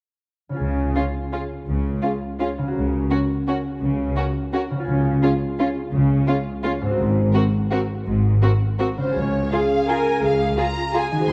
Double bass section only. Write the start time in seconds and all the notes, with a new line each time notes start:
0.60 C#2
1.68 C#2
2.76 C#2
3.83 C#2
4.88 C#2
5.93 C#2
6.99 G#1
8.07 G#1
9.16 C#2
10.23 C#2
11.30 D#2